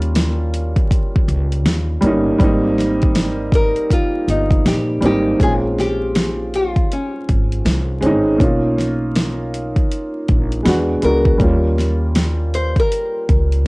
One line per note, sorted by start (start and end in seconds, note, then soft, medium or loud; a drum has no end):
0.00 0.73 D#2 loud
0.00 0.52 G3 medium
0.00 0.53 A#3 medium
0.00 0.54 C#4 medium
0.00 0.55 F4 medium
0.00 closed hi-hat soft
0.15 snare loud
0.15 closed hi-hat medium
0.54 closed hi-hat medium
0.76 kick medium
0.76 closed hi-hat soft
0.91 kick medium
0.91 closed hi-hat medium
1.16 kick medium
1.28 1.65 C#2 medium
1.28 closed hi-hat medium
1.52 closed hi-hat soft
1.65 1.96 D#2 medium
1.65 snare loud
1.65 closed hi-hat medium
2.01 2.33 G1 medium
2.01 2.33 G3 medium
2.01 2.34 A#3 medium
2.01 2.35 C#4 medium
2.01 closed hi-hat medium
2.06 2.35 D#4 loud
2.38 3.73 G#1 loud
2.38 3.52 G3 loud
2.38 3.53 A#3 medium
2.38 3.54 C4 medium
2.38 kick loud
2.38 closed hi-hat medium
2.44 3.55 D#4 loud
2.78 snare soft
2.78 closed hi-hat medium
3.02 kick medium
3.02 closed hi-hat soft
3.15 snare loud
3.15 closed hi-hat medium
3.52 3.92 A#4 loud
3.52 kick medium
3.52 closed hi-hat medium
3.76 closed hi-hat soft
3.91 4.69 F4 medium
3.91 kick medium
3.91 closed hi-hat medium
4.28 4.58 G1 medium
4.28 5.06 D#4 medium
4.28 closed hi-hat medium
4.51 kick loud
4.51 closed hi-hat soft
4.66 4.96 A#1 medium
4.66 5.04 G4 medium
4.66 snare loud
4.66 closed hi-hat medium
5.01 5.33 G#1 medium
5.01 5.33 G3 medium
5.01 5.33 A#3 medium
5.01 5.34 C4 medium
5.01 closed hi-hat medium
5.06 5.35 D#4 loud
5.06 5.42 G4 loud
5.38 6.73 A#1 loud
5.38 6.52 G#3 medium
5.38 6.53 C4 medium
5.38 6.54 C#4 medium
5.38 kick loud
5.38 closed hi-hat medium
5.43 6.55 F4 medium
5.43 5.52 G#4 loud
5.78 6.55 G4 loud
5.78 snare soft
5.78 closed hi-hat medium
6.15 snare loud
6.15 closed hi-hat medium
6.54 6.92 F4 medium
6.54 closed hi-hat medium
6.76 kick medium
6.76 closed hi-hat soft
6.92 8.00 C#4 medium
6.92 closed hi-hat medium
7.29 7.59 G#1 medium
7.29 kick medium
7.29 closed hi-hat medium
7.52 closed hi-hat soft
7.65 8.04 C2 medium
7.65 snare loud
7.65 closed hi-hat medium
8.01 8.40 G#1 medium
8.01 8.33 G#3 medium
8.01 8.33 C4 medium
8.01 8.34 C#4 medium
8.01 closed hi-hat medium
8.06 8.35 D#4 loud
8.38 9.73 B1 medium
8.38 9.52 A#3 medium
8.38 9.53 C#4 medium
8.38 9.54 D#4 medium
8.38 kick loud
8.38 closed hi-hat medium
8.44 9.55 F4 medium
8.78 snare soft
8.78 closed hi-hat medium
9.15 snare loud
9.15 closed hi-hat medium
9.54 closed hi-hat medium
9.76 kick medium
9.76 closed hi-hat soft
9.91 closed hi-hat medium
10.28 10.59 A#1 medium
10.28 kick medium
10.28 closed hi-hat medium
10.52 closed hi-hat soft
10.63 10.96 E2 medium
10.63 10.96 G#3 medium
10.63 10.97 B3 medium
10.63 snare loud
10.63 closed hi-hat medium
10.67 10.98 D4 medium
10.67 10.77 F#4 medium
10.67 10.99 F#4 medium
11.01 11.33 C#2 medium
11.01 11.33 G#3 medium
11.01 11.34 B3 medium
11.01 11.35 D4 medium
11.01 12.54 A#4 medium
11.01 closed hi-hat medium
11.06 11.35 F#4 medium
11.25 kick medium
11.38 12.73 D#2 loud
11.38 12.52 G3 medium
11.38 12.53 A#3 medium
11.38 12.54 C#4 medium
11.38 kick loud
11.38 closed hi-hat medium
11.43 12.55 F4 medium
11.78 snare soft
11.78 closed hi-hat medium
12.15 snare loud
12.15 closed hi-hat medium
12.54 12.79 C5 loud
12.54 closed hi-hat medium
12.76 13.67 A#4 loud
12.76 kick medium
12.76 closed hi-hat soft
12.92 closed hi-hat loud
13.29 13.65 C#2 medium
13.29 kick medium
13.29 closed hi-hat medium
13.52 closed hi-hat soft